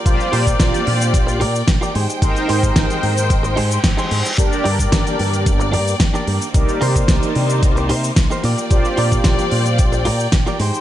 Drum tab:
HH |x-oxxxoxxxo-x-ox|xxoxxxoxxxoxxxox|x-oxxxoxxxo-x-ox|xxoxxxoxxxo-x-ox|
SH |xx-xxx-xxx-xxx-x|xx-xxx-xxx-xxx-x|xx-xxx-xxx-xxx-x|xx-xxx-xxx-xxx-x|
SD |----o-------o---|----o-------o---|----o-------o---|----o-------o---|
BD |o--oo---o---o---|o--oo---o---o---|o--oo---o---o---|o--oo---o---o---|

HH |x-oxxxoxxxo-x-ox|
SH |xx-xxx-xxx-xxx-x|
SD |----o-------o---|
BD |o--oo---o---o---|